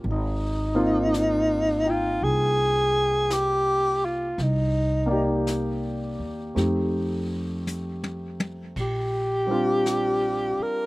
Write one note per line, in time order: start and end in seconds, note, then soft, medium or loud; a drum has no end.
0.04 2.17 G#1 medium
0.04 brush sweep soft
0.11 1.91 D#4 medium
0.75 4.37 A#3 soft
0.75 4.37 C4 soft
0.75 1.82 D#4 soft
0.75 1.83 F4 medium
1.14 brush sweep soft
1.14 snare soft
1.14 hi-hat pedal soft
1.83 4.37 D#4 soft
1.83 4.38 F4 soft
1.83 4.39 G5 soft
1.90 2.25 F4 medium
2.22 4.34 C2 medium
2.22 3.34 G#4 medium
2.22 brush sweep soft
3.30 4.06 G4 medium
3.30 brush sweep soft
3.30 snare soft
3.30 hi-hat pedal soft
4.05 4.44 F4 medium
4.38 6.15 C2 medium
4.38 brush sweep soft
4.38 snare soft
4.42 5.49 D#4 medium
5.06 6.54 A#3 soft
5.06 6.54 D5 soft
5.10 6.54 D#4 soft
5.10 6.54 G4 medium
5.47 brush sweep soft
5.47 snare soft
5.47 hi-hat pedal soft
6.19 6.53 D#2 medium
6.55 8.71 F2 medium
6.55 8.75 A3 soft
6.55 8.75 C4 soft
6.55 8.75 D#4 soft
6.55 8.75 G4 soft
6.55 brush sweep soft
6.55 snare soft
7.67 hi-hat pedal soft
7.67 high tom soft
8.04 high tom soft
8.40 high tom medium
8.76 10.54 A#1 medium
8.76 brush sweep soft
8.76 kick soft
8.76 ride soft
8.80 10.64 G4 medium
9.47 10.86 G3 soft
9.47 10.86 C4 soft
9.47 10.86 D4 soft
9.51 10.86 F4 soft
9.86 brush sweep soft
9.86 snare soft
9.86 hi-hat pedal soft
10.58 muted upright bass stroke soft
10.62 10.86 A#4 medium